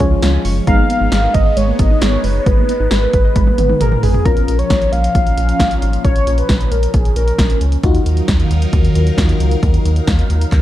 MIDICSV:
0, 0, Header, 1, 7, 480
1, 0, Start_track
1, 0, Tempo, 447761
1, 720, Time_signature, 4, 2, 24, 8
1, 11384, End_track
2, 0, Start_track
2, 0, Title_t, "Soft synth lead"
2, 0, Program_c, 0, 80
2, 720, Note_on_c, 0, 77, 127
2, 1435, Note_on_c, 0, 75, 110
2, 1451, Note_off_c, 0, 77, 0
2, 1678, Note_on_c, 0, 73, 107
2, 1694, Note_off_c, 0, 75, 0
2, 1917, Note_on_c, 0, 75, 104
2, 1933, Note_off_c, 0, 73, 0
2, 2156, Note_on_c, 0, 73, 100
2, 2172, Note_off_c, 0, 75, 0
2, 2559, Note_off_c, 0, 73, 0
2, 2566, Note_on_c, 0, 73, 67
2, 2636, Note_on_c, 0, 71, 102
2, 2652, Note_off_c, 0, 73, 0
2, 4075, Note_off_c, 0, 71, 0
2, 4082, Note_on_c, 0, 70, 98
2, 4304, Note_off_c, 0, 70, 0
2, 4322, Note_on_c, 0, 68, 97
2, 4557, Note_on_c, 0, 70, 111
2, 4573, Note_off_c, 0, 68, 0
2, 4917, Note_on_c, 0, 73, 104
2, 4933, Note_off_c, 0, 70, 0
2, 5275, Note_on_c, 0, 77, 125
2, 5291, Note_off_c, 0, 73, 0
2, 6472, Note_off_c, 0, 77, 0
2, 6478, Note_on_c, 0, 73, 107
2, 6839, Note_on_c, 0, 71, 96
2, 6855, Note_off_c, 0, 73, 0
2, 7198, Note_on_c, 0, 70, 91
2, 7214, Note_off_c, 0, 71, 0
2, 7439, Note_on_c, 0, 68, 96
2, 7456, Note_off_c, 0, 70, 0
2, 7674, Note_off_c, 0, 68, 0
2, 7681, Note_on_c, 0, 70, 84
2, 8127, Note_off_c, 0, 70, 0
2, 11384, End_track
3, 0, Start_track
3, 0, Title_t, "Synth arpeggio sound"
3, 0, Program_c, 1, 84
3, 120, Note_on_c, 1, 65, 81
3, 210, Note_off_c, 1, 65, 0
3, 240, Note_on_c, 1, 77, 93
3, 330, Note_off_c, 1, 77, 0
3, 360, Note_on_c, 1, 80, 89
3, 450, Note_off_c, 1, 80, 0
3, 481, Note_on_c, 1, 85, 94
3, 571, Note_off_c, 1, 85, 0
3, 721, Note_on_c, 1, 56, 96
3, 811, Note_off_c, 1, 56, 0
3, 842, Note_on_c, 1, 58, 75
3, 931, Note_off_c, 1, 58, 0
3, 961, Note_on_c, 1, 59, 84
3, 1050, Note_off_c, 1, 59, 0
3, 1082, Note_on_c, 1, 63, 84
3, 1171, Note_off_c, 1, 63, 0
3, 1202, Note_on_c, 1, 68, 95
3, 1291, Note_off_c, 1, 68, 0
3, 1322, Note_on_c, 1, 70, 87
3, 1411, Note_off_c, 1, 70, 0
3, 1442, Note_on_c, 1, 71, 91
3, 1531, Note_off_c, 1, 71, 0
3, 1561, Note_on_c, 1, 75, 91
3, 1651, Note_off_c, 1, 75, 0
3, 1680, Note_on_c, 1, 56, 90
3, 1770, Note_off_c, 1, 56, 0
3, 1802, Note_on_c, 1, 58, 76
3, 1891, Note_off_c, 1, 58, 0
3, 1921, Note_on_c, 1, 59, 87
3, 2011, Note_off_c, 1, 59, 0
3, 2041, Note_on_c, 1, 63, 86
3, 2131, Note_off_c, 1, 63, 0
3, 2160, Note_on_c, 1, 68, 97
3, 2250, Note_off_c, 1, 68, 0
3, 2281, Note_on_c, 1, 70, 90
3, 2370, Note_off_c, 1, 70, 0
3, 2401, Note_on_c, 1, 71, 93
3, 2491, Note_off_c, 1, 71, 0
3, 2639, Note_on_c, 1, 56, 95
3, 2730, Note_off_c, 1, 56, 0
3, 2761, Note_on_c, 1, 58, 73
3, 2850, Note_off_c, 1, 58, 0
3, 2881, Note_on_c, 1, 59, 82
3, 2971, Note_off_c, 1, 59, 0
3, 3000, Note_on_c, 1, 63, 82
3, 3090, Note_off_c, 1, 63, 0
3, 3120, Note_on_c, 1, 68, 96
3, 3210, Note_off_c, 1, 68, 0
3, 3240, Note_on_c, 1, 70, 88
3, 3330, Note_off_c, 1, 70, 0
3, 3360, Note_on_c, 1, 71, 95
3, 3450, Note_off_c, 1, 71, 0
3, 3480, Note_on_c, 1, 75, 95
3, 3570, Note_off_c, 1, 75, 0
3, 3600, Note_on_c, 1, 56, 92
3, 3690, Note_off_c, 1, 56, 0
3, 3721, Note_on_c, 1, 58, 79
3, 3811, Note_off_c, 1, 58, 0
3, 3841, Note_on_c, 1, 59, 81
3, 3931, Note_off_c, 1, 59, 0
3, 3961, Note_on_c, 1, 63, 82
3, 4051, Note_off_c, 1, 63, 0
3, 4079, Note_on_c, 1, 68, 92
3, 4170, Note_off_c, 1, 68, 0
3, 4200, Note_on_c, 1, 70, 85
3, 4290, Note_off_c, 1, 70, 0
3, 4319, Note_on_c, 1, 71, 95
3, 4410, Note_off_c, 1, 71, 0
3, 11384, End_track
4, 0, Start_track
4, 0, Title_t, "FM electric piano"
4, 0, Program_c, 2, 5
4, 3, Note_on_c, 2, 61, 61
4, 3, Note_on_c, 2, 65, 58
4, 3, Note_on_c, 2, 68, 55
4, 3, Note_on_c, 2, 73, 67
4, 712, Note_off_c, 2, 68, 0
4, 722, Note_off_c, 2, 61, 0
4, 722, Note_off_c, 2, 65, 0
4, 722, Note_off_c, 2, 73, 0
4, 724, Note_on_c, 2, 59, 71
4, 724, Note_on_c, 2, 63, 66
4, 724, Note_on_c, 2, 82, 76
4, 725, Note_on_c, 2, 68, 66
4, 4519, Note_off_c, 2, 59, 0
4, 4520, Note_off_c, 2, 63, 0
4, 4520, Note_off_c, 2, 68, 0
4, 4520, Note_off_c, 2, 82, 0
4, 4561, Note_on_c, 2, 61, 68
4, 4561, Note_on_c, 2, 65, 61
4, 4561, Note_on_c, 2, 82, 77
4, 8358, Note_off_c, 2, 61, 0
4, 8358, Note_off_c, 2, 65, 0
4, 8358, Note_off_c, 2, 82, 0
4, 8400, Note_on_c, 2, 63, 82
4, 8401, Note_on_c, 2, 65, 77
4, 8401, Note_on_c, 2, 66, 89
4, 11384, Note_off_c, 2, 63, 0
4, 11384, Note_off_c, 2, 65, 0
4, 11384, Note_off_c, 2, 66, 0
4, 11384, End_track
5, 0, Start_track
5, 0, Title_t, "Analog synth pad"
5, 0, Program_c, 3, 89
5, 0, Note_on_c, 3, 53, 78
5, 0, Note_on_c, 3, 56, 72
5, 0, Note_on_c, 3, 61, 84
5, 681, Note_off_c, 3, 53, 0
5, 682, Note_off_c, 3, 56, 0
5, 682, Note_off_c, 3, 61, 0
5, 720, Note_on_c, 3, 56, 78
5, 720, Note_on_c, 3, 59, 84
5, 4522, Note_off_c, 3, 56, 0
5, 4522, Note_off_c, 3, 59, 0
5, 4560, Note_on_c, 3, 46, 70
5, 4560, Note_on_c, 3, 61, 84
5, 4561, Note_on_c, 3, 53, 77
5, 8362, Note_off_c, 3, 46, 0
5, 8362, Note_off_c, 3, 53, 0
5, 8362, Note_off_c, 3, 61, 0
5, 8401, Note_on_c, 3, 63, 69
5, 8401, Note_on_c, 3, 70, 86
5, 8402, Note_on_c, 3, 51, 77
5, 8402, Note_on_c, 3, 54, 72
5, 8402, Note_on_c, 3, 77, 69
5, 11384, Note_off_c, 3, 51, 0
5, 11384, Note_off_c, 3, 54, 0
5, 11384, Note_off_c, 3, 63, 0
5, 11384, Note_off_c, 3, 70, 0
5, 11384, Note_off_c, 3, 77, 0
5, 11384, End_track
6, 0, Start_track
6, 0, Title_t, "Analog synth bass"
6, 0, Program_c, 4, 38
6, 2, Note_on_c, 4, 37, 104
6, 170, Note_off_c, 4, 37, 0
6, 242, Note_on_c, 4, 37, 104
6, 409, Note_off_c, 4, 37, 0
6, 481, Note_on_c, 4, 30, 96
6, 649, Note_off_c, 4, 30, 0
6, 722, Note_on_c, 4, 32, 107
6, 889, Note_off_c, 4, 32, 0
6, 1081, Note_on_c, 4, 32, 106
6, 1165, Note_off_c, 4, 32, 0
6, 1199, Note_on_c, 4, 32, 112
6, 1368, Note_off_c, 4, 32, 0
6, 1442, Note_on_c, 4, 32, 98
6, 1610, Note_off_c, 4, 32, 0
6, 1680, Note_on_c, 4, 32, 107
6, 1848, Note_off_c, 4, 32, 0
6, 1923, Note_on_c, 4, 32, 112
6, 2090, Note_off_c, 4, 32, 0
6, 2162, Note_on_c, 4, 32, 102
6, 2330, Note_off_c, 4, 32, 0
6, 2401, Note_on_c, 4, 30, 99
6, 2569, Note_off_c, 4, 30, 0
6, 2641, Note_on_c, 4, 32, 108
6, 2809, Note_off_c, 4, 32, 0
6, 3000, Note_on_c, 4, 32, 101
6, 3084, Note_off_c, 4, 32, 0
6, 3121, Note_on_c, 4, 32, 107
6, 3289, Note_off_c, 4, 32, 0
6, 3361, Note_on_c, 4, 32, 104
6, 3529, Note_off_c, 4, 32, 0
6, 3600, Note_on_c, 4, 32, 113
6, 3768, Note_off_c, 4, 32, 0
6, 3840, Note_on_c, 4, 32, 103
6, 4008, Note_off_c, 4, 32, 0
6, 4079, Note_on_c, 4, 32, 95
6, 4248, Note_off_c, 4, 32, 0
6, 4321, Note_on_c, 4, 32, 96
6, 4489, Note_off_c, 4, 32, 0
6, 4561, Note_on_c, 4, 34, 110
6, 4729, Note_off_c, 4, 34, 0
6, 4799, Note_on_c, 4, 34, 107
6, 4968, Note_off_c, 4, 34, 0
6, 5041, Note_on_c, 4, 34, 110
6, 5209, Note_off_c, 4, 34, 0
6, 5280, Note_on_c, 4, 34, 99
6, 5448, Note_off_c, 4, 34, 0
6, 5521, Note_on_c, 4, 34, 107
6, 5689, Note_off_c, 4, 34, 0
6, 5760, Note_on_c, 4, 34, 104
6, 5928, Note_off_c, 4, 34, 0
6, 5999, Note_on_c, 4, 34, 110
6, 6168, Note_off_c, 4, 34, 0
6, 6239, Note_on_c, 4, 32, 96
6, 6408, Note_off_c, 4, 32, 0
6, 6481, Note_on_c, 4, 34, 102
6, 6649, Note_off_c, 4, 34, 0
6, 6721, Note_on_c, 4, 34, 107
6, 6889, Note_off_c, 4, 34, 0
6, 6961, Note_on_c, 4, 34, 116
6, 7129, Note_off_c, 4, 34, 0
6, 7200, Note_on_c, 4, 34, 98
6, 7369, Note_off_c, 4, 34, 0
6, 7439, Note_on_c, 4, 34, 97
6, 7608, Note_off_c, 4, 34, 0
6, 7680, Note_on_c, 4, 34, 100
6, 7848, Note_off_c, 4, 34, 0
6, 7917, Note_on_c, 4, 34, 103
6, 8086, Note_off_c, 4, 34, 0
6, 8160, Note_on_c, 4, 37, 102
6, 8328, Note_off_c, 4, 37, 0
6, 8400, Note_on_c, 4, 39, 106
6, 8568, Note_off_c, 4, 39, 0
6, 8639, Note_on_c, 4, 39, 101
6, 8807, Note_off_c, 4, 39, 0
6, 8880, Note_on_c, 4, 39, 108
6, 9048, Note_off_c, 4, 39, 0
6, 9120, Note_on_c, 4, 39, 101
6, 9288, Note_off_c, 4, 39, 0
6, 9359, Note_on_c, 4, 39, 112
6, 9527, Note_off_c, 4, 39, 0
6, 9599, Note_on_c, 4, 39, 108
6, 9768, Note_off_c, 4, 39, 0
6, 9838, Note_on_c, 4, 39, 110
6, 10007, Note_off_c, 4, 39, 0
6, 10080, Note_on_c, 4, 37, 101
6, 10248, Note_off_c, 4, 37, 0
6, 10321, Note_on_c, 4, 39, 101
6, 10489, Note_off_c, 4, 39, 0
6, 10561, Note_on_c, 4, 39, 101
6, 10729, Note_off_c, 4, 39, 0
6, 10802, Note_on_c, 4, 39, 115
6, 10969, Note_off_c, 4, 39, 0
6, 11041, Note_on_c, 4, 39, 94
6, 11209, Note_off_c, 4, 39, 0
6, 11280, Note_on_c, 4, 39, 108
6, 11384, Note_off_c, 4, 39, 0
6, 11384, End_track
7, 0, Start_track
7, 0, Title_t, "Drums"
7, 1, Note_on_c, 9, 42, 82
7, 2, Note_on_c, 9, 36, 106
7, 108, Note_off_c, 9, 42, 0
7, 110, Note_off_c, 9, 36, 0
7, 241, Note_on_c, 9, 42, 92
7, 244, Note_on_c, 9, 38, 125
7, 348, Note_off_c, 9, 42, 0
7, 351, Note_off_c, 9, 38, 0
7, 482, Note_on_c, 9, 46, 76
7, 589, Note_off_c, 9, 46, 0
7, 722, Note_on_c, 9, 36, 118
7, 722, Note_on_c, 9, 42, 69
7, 829, Note_off_c, 9, 36, 0
7, 829, Note_off_c, 9, 42, 0
7, 964, Note_on_c, 9, 42, 87
7, 1071, Note_off_c, 9, 42, 0
7, 1199, Note_on_c, 9, 38, 112
7, 1199, Note_on_c, 9, 42, 65
7, 1306, Note_off_c, 9, 38, 0
7, 1306, Note_off_c, 9, 42, 0
7, 1441, Note_on_c, 9, 42, 71
7, 1442, Note_on_c, 9, 36, 98
7, 1549, Note_off_c, 9, 42, 0
7, 1550, Note_off_c, 9, 36, 0
7, 1682, Note_on_c, 9, 42, 79
7, 1789, Note_off_c, 9, 42, 0
7, 1920, Note_on_c, 9, 42, 85
7, 1923, Note_on_c, 9, 36, 106
7, 2028, Note_off_c, 9, 42, 0
7, 2030, Note_off_c, 9, 36, 0
7, 2161, Note_on_c, 9, 42, 94
7, 2164, Note_on_c, 9, 38, 123
7, 2268, Note_off_c, 9, 42, 0
7, 2271, Note_off_c, 9, 38, 0
7, 2400, Note_on_c, 9, 46, 75
7, 2508, Note_off_c, 9, 46, 0
7, 2641, Note_on_c, 9, 42, 69
7, 2642, Note_on_c, 9, 36, 122
7, 2749, Note_off_c, 9, 36, 0
7, 2749, Note_off_c, 9, 42, 0
7, 2883, Note_on_c, 9, 42, 85
7, 2990, Note_off_c, 9, 42, 0
7, 3118, Note_on_c, 9, 38, 107
7, 3118, Note_on_c, 9, 42, 66
7, 3225, Note_off_c, 9, 38, 0
7, 3225, Note_off_c, 9, 42, 0
7, 3360, Note_on_c, 9, 42, 71
7, 3362, Note_on_c, 9, 36, 97
7, 3467, Note_off_c, 9, 42, 0
7, 3469, Note_off_c, 9, 36, 0
7, 3599, Note_on_c, 9, 42, 84
7, 3599, Note_on_c, 9, 48, 64
7, 3600, Note_on_c, 9, 36, 100
7, 3706, Note_off_c, 9, 42, 0
7, 3706, Note_off_c, 9, 48, 0
7, 3707, Note_off_c, 9, 36, 0
7, 3721, Note_on_c, 9, 48, 61
7, 3828, Note_off_c, 9, 48, 0
7, 3840, Note_on_c, 9, 42, 80
7, 3840, Note_on_c, 9, 47, 80
7, 3947, Note_off_c, 9, 42, 0
7, 3947, Note_off_c, 9, 47, 0
7, 3961, Note_on_c, 9, 47, 75
7, 4068, Note_off_c, 9, 47, 0
7, 4081, Note_on_c, 9, 42, 91
7, 4081, Note_on_c, 9, 45, 94
7, 4188, Note_off_c, 9, 42, 0
7, 4188, Note_off_c, 9, 45, 0
7, 4201, Note_on_c, 9, 45, 92
7, 4308, Note_off_c, 9, 45, 0
7, 4321, Note_on_c, 9, 43, 112
7, 4321, Note_on_c, 9, 46, 74
7, 4428, Note_off_c, 9, 43, 0
7, 4429, Note_off_c, 9, 46, 0
7, 4441, Note_on_c, 9, 43, 96
7, 4548, Note_off_c, 9, 43, 0
7, 4561, Note_on_c, 9, 36, 118
7, 4561, Note_on_c, 9, 42, 67
7, 4668, Note_off_c, 9, 36, 0
7, 4669, Note_off_c, 9, 42, 0
7, 4682, Note_on_c, 9, 42, 57
7, 4789, Note_off_c, 9, 42, 0
7, 4805, Note_on_c, 9, 42, 83
7, 4912, Note_off_c, 9, 42, 0
7, 4921, Note_on_c, 9, 42, 49
7, 5028, Note_off_c, 9, 42, 0
7, 5040, Note_on_c, 9, 38, 107
7, 5040, Note_on_c, 9, 42, 66
7, 5041, Note_on_c, 9, 36, 121
7, 5147, Note_off_c, 9, 38, 0
7, 5148, Note_off_c, 9, 36, 0
7, 5148, Note_off_c, 9, 42, 0
7, 5163, Note_on_c, 9, 42, 50
7, 5270, Note_off_c, 9, 42, 0
7, 5282, Note_on_c, 9, 42, 69
7, 5389, Note_off_c, 9, 42, 0
7, 5404, Note_on_c, 9, 42, 67
7, 5512, Note_off_c, 9, 42, 0
7, 5520, Note_on_c, 9, 36, 119
7, 5521, Note_on_c, 9, 42, 81
7, 5627, Note_off_c, 9, 36, 0
7, 5628, Note_off_c, 9, 42, 0
7, 5645, Note_on_c, 9, 42, 52
7, 5752, Note_off_c, 9, 42, 0
7, 5762, Note_on_c, 9, 42, 81
7, 5869, Note_off_c, 9, 42, 0
7, 5883, Note_on_c, 9, 42, 54
7, 5990, Note_off_c, 9, 42, 0
7, 5998, Note_on_c, 9, 36, 117
7, 6000, Note_on_c, 9, 42, 88
7, 6003, Note_on_c, 9, 38, 120
7, 6106, Note_off_c, 9, 36, 0
7, 6108, Note_off_c, 9, 42, 0
7, 6111, Note_off_c, 9, 38, 0
7, 6121, Note_on_c, 9, 42, 63
7, 6228, Note_off_c, 9, 42, 0
7, 6241, Note_on_c, 9, 42, 74
7, 6348, Note_off_c, 9, 42, 0
7, 6360, Note_on_c, 9, 42, 52
7, 6467, Note_off_c, 9, 42, 0
7, 6481, Note_on_c, 9, 36, 118
7, 6481, Note_on_c, 9, 42, 67
7, 6588, Note_off_c, 9, 42, 0
7, 6589, Note_off_c, 9, 36, 0
7, 6600, Note_on_c, 9, 42, 56
7, 6707, Note_off_c, 9, 42, 0
7, 6723, Note_on_c, 9, 42, 84
7, 6830, Note_off_c, 9, 42, 0
7, 6838, Note_on_c, 9, 42, 49
7, 6945, Note_off_c, 9, 42, 0
7, 6958, Note_on_c, 9, 38, 108
7, 6958, Note_on_c, 9, 42, 66
7, 6960, Note_on_c, 9, 36, 122
7, 7065, Note_off_c, 9, 38, 0
7, 7065, Note_off_c, 9, 42, 0
7, 7068, Note_off_c, 9, 36, 0
7, 7081, Note_on_c, 9, 42, 52
7, 7189, Note_off_c, 9, 42, 0
7, 7200, Note_on_c, 9, 42, 69
7, 7307, Note_off_c, 9, 42, 0
7, 7321, Note_on_c, 9, 42, 67
7, 7428, Note_off_c, 9, 42, 0
7, 7438, Note_on_c, 9, 42, 80
7, 7439, Note_on_c, 9, 36, 117
7, 7545, Note_off_c, 9, 42, 0
7, 7547, Note_off_c, 9, 36, 0
7, 7561, Note_on_c, 9, 42, 53
7, 7669, Note_off_c, 9, 42, 0
7, 7678, Note_on_c, 9, 42, 81
7, 7785, Note_off_c, 9, 42, 0
7, 7801, Note_on_c, 9, 42, 53
7, 7908, Note_off_c, 9, 42, 0
7, 7918, Note_on_c, 9, 36, 117
7, 7919, Note_on_c, 9, 42, 88
7, 7922, Note_on_c, 9, 38, 122
7, 8025, Note_off_c, 9, 36, 0
7, 8026, Note_off_c, 9, 42, 0
7, 8029, Note_off_c, 9, 38, 0
7, 8038, Note_on_c, 9, 42, 62
7, 8146, Note_off_c, 9, 42, 0
7, 8159, Note_on_c, 9, 42, 70
7, 8266, Note_off_c, 9, 42, 0
7, 8277, Note_on_c, 9, 42, 52
7, 8385, Note_off_c, 9, 42, 0
7, 8399, Note_on_c, 9, 42, 68
7, 8400, Note_on_c, 9, 36, 113
7, 8506, Note_off_c, 9, 42, 0
7, 8508, Note_off_c, 9, 36, 0
7, 8518, Note_on_c, 9, 42, 57
7, 8626, Note_off_c, 9, 42, 0
7, 8641, Note_on_c, 9, 42, 87
7, 8748, Note_off_c, 9, 42, 0
7, 8757, Note_on_c, 9, 42, 48
7, 8865, Note_off_c, 9, 42, 0
7, 8877, Note_on_c, 9, 38, 104
7, 8877, Note_on_c, 9, 42, 64
7, 8880, Note_on_c, 9, 36, 121
7, 8985, Note_off_c, 9, 38, 0
7, 8985, Note_off_c, 9, 42, 0
7, 8987, Note_off_c, 9, 36, 0
7, 9000, Note_on_c, 9, 42, 51
7, 9108, Note_off_c, 9, 42, 0
7, 9120, Note_on_c, 9, 42, 70
7, 9227, Note_off_c, 9, 42, 0
7, 9241, Note_on_c, 9, 42, 65
7, 9348, Note_off_c, 9, 42, 0
7, 9358, Note_on_c, 9, 42, 80
7, 9359, Note_on_c, 9, 36, 117
7, 9465, Note_off_c, 9, 42, 0
7, 9467, Note_off_c, 9, 36, 0
7, 9482, Note_on_c, 9, 42, 52
7, 9589, Note_off_c, 9, 42, 0
7, 9599, Note_on_c, 9, 42, 80
7, 9706, Note_off_c, 9, 42, 0
7, 9721, Note_on_c, 9, 42, 54
7, 9828, Note_off_c, 9, 42, 0
7, 9838, Note_on_c, 9, 36, 117
7, 9840, Note_on_c, 9, 42, 91
7, 9843, Note_on_c, 9, 38, 117
7, 9945, Note_off_c, 9, 36, 0
7, 9948, Note_off_c, 9, 42, 0
7, 9951, Note_off_c, 9, 38, 0
7, 9960, Note_on_c, 9, 42, 63
7, 10067, Note_off_c, 9, 42, 0
7, 10080, Note_on_c, 9, 42, 74
7, 10188, Note_off_c, 9, 42, 0
7, 10199, Note_on_c, 9, 42, 51
7, 10306, Note_off_c, 9, 42, 0
7, 10321, Note_on_c, 9, 36, 118
7, 10321, Note_on_c, 9, 42, 68
7, 10428, Note_off_c, 9, 36, 0
7, 10429, Note_off_c, 9, 42, 0
7, 10441, Note_on_c, 9, 42, 54
7, 10548, Note_off_c, 9, 42, 0
7, 10564, Note_on_c, 9, 42, 86
7, 10671, Note_off_c, 9, 42, 0
7, 10679, Note_on_c, 9, 42, 48
7, 10787, Note_off_c, 9, 42, 0
7, 10800, Note_on_c, 9, 38, 108
7, 10800, Note_on_c, 9, 42, 64
7, 10801, Note_on_c, 9, 36, 120
7, 10907, Note_off_c, 9, 38, 0
7, 10908, Note_off_c, 9, 42, 0
7, 10909, Note_off_c, 9, 36, 0
7, 10922, Note_on_c, 9, 42, 50
7, 11029, Note_off_c, 9, 42, 0
7, 11042, Note_on_c, 9, 42, 70
7, 11149, Note_off_c, 9, 42, 0
7, 11164, Note_on_c, 9, 42, 68
7, 11271, Note_off_c, 9, 42, 0
7, 11280, Note_on_c, 9, 36, 116
7, 11281, Note_on_c, 9, 39, 59
7, 11281, Note_on_c, 9, 42, 79
7, 11384, Note_off_c, 9, 36, 0
7, 11384, Note_off_c, 9, 39, 0
7, 11384, Note_off_c, 9, 42, 0
7, 11384, End_track
0, 0, End_of_file